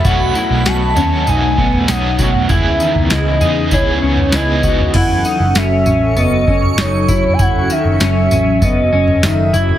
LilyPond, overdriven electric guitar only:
\new Staff \with { instrumentName = "Overdriven electric guitar" } { \time 4/4 \key fis \dorian \tempo 4 = 98 <b, fis a cis' fis'>4. <fis a cis' fis'>8 <fis a cis' fis'>4 <fis a cis' fis'>4 | <cis e b gis'>4. <b dis' gis'>8 <e b dis' gis'>4 <e b dis' gis'>4 | r1 | r1 | }